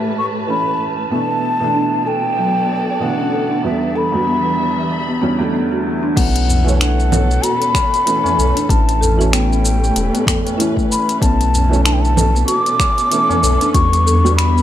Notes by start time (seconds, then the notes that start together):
Already playing: A2 E3 A3 C#4 G4 B4 E5 A5
0.18 C#6
0.47 E3 A3 C#4 B5
1.10 B2 E3 A3 B3 D4 A5
1.26 B3
1.60 B2 E3 A3
1.64 D4
1.75 D4
1.79 D5
1.85 A4
2.06 A4 G5
2.38 F#3
3.00 B2 D3 E3 A3 F#5
3.20 C#4
3.33 A4
3.51 D4
3.63 E2 D3 E3 G3 B3 E5
3.96 A4 B5
4.08 E2 E5
4.14 D3 G3 B3 F#4
4.19 G3
4.27 B3
4.80 B5
5.09 B3
5.21 E2 D3 G3 B3 C#4
5.38 E2 D3 G3 A3
5.54 B3
5.72 F#4
6.03 D4
6.16 B1 B2 E3 A3 B3 C#4 F#5, kick, closed hi-hat, crash, shaker
6.36 closed hi-hat, shaker
6.48 tabla tin, tabla ge, shaker
6.64 E3 A3 A4, tabla tin, shaker
6.69 C#5
6.79 D4 F#5, finger snap, closed hi-hat, shaker
7.00 shaker
7.11 A4, low conga, shaker
7.21 C#4
7.31 shaker
7.43 F#4 B5, closed hi-hat, shaker
7.62 closed hi-hat, tabla tin, shaker
7.75 finger snap, kick, tabla na, shaker
7.94 closed hi-hat, shaker
8.06 E3 A3 C#4, closed hi-hat, shaker
8.24 C#4, tabla na, tabla ge, shaker
8.37 B1 A4, tabla na, shaker
8.56 D4, closed hi-hat, shaker
8.68 A1 A2 E3 A3 C#4 A5, kick, closed hi-hat, shaker
8.89 closed hi-hat, shaker
9.01 A4, tabla tin, tabla ge, shaker
9.14 E3 A3
9.19 A3 C#4 F#4, tabla tin, shaker
9.32 B3 G5, finger snap, closed hi-hat, shaker
9.53 shaker
9.65 G3, shaker
9.84 B4, shaker
9.96 E1, closed hi-hat, shaker
10.14 B3, closed hi-hat, tabla na, shaker
10.27 A4, finger snap, kick, tabla tin, tabla ge, shaker
10.45 closed hi-hat, tabla na, shaker
10.57 E3 A3 C#4 E4, closed hi-hat, shaker
10.76 A3, kick, tabla tin, shaker
10.91 B5, tabla na, tabla tin, shaker
11.09 closed hi-hat, shaker
11.20 B1 B2 E3 A3 B3 C#4 A5, kick, closed hi-hat, shaker
11.41 closed hi-hat, shaker
11.52 B3, tabla tin, tabla ge, shaker
11.69 E3 A3, tabla tin
11.73 C#4, shaker
11.84 D4 A5, finger snap, closed hi-hat, shaker
11.93 G5
12.00 A4 A5
12.05 shaker
12.17 A4, low conga, shaker
12.36 shaker
12.47 F#4 D6, closed hi-hat, shaker
12.66 closed hi-hat, tabla tin, shaker
12.80 finger snap, kick, tabla na, shaker
12.98 closed hi-hat, shaker
13.11 E3 A3 C#4, closed hi-hat, shaker
13.29 C#4, tabla na, tabla ge, shaker
13.43 B1 A4, tabla na, shaker
13.61 D4, closed hi-hat, shaker
13.73 E2 D3 E3 G3 B3 C#6, kick, closed hi-hat, shaker
13.93 closed hi-hat, shaker
14.06 A4, tabla tin, tabla ge, shaker
14.23 D3 G3 B3 F#4, tabla tin, shaker
14.29 G3 E5
14.36 B3 B5, finger snap, closed hi-hat, shaker
14.58 B5, shaker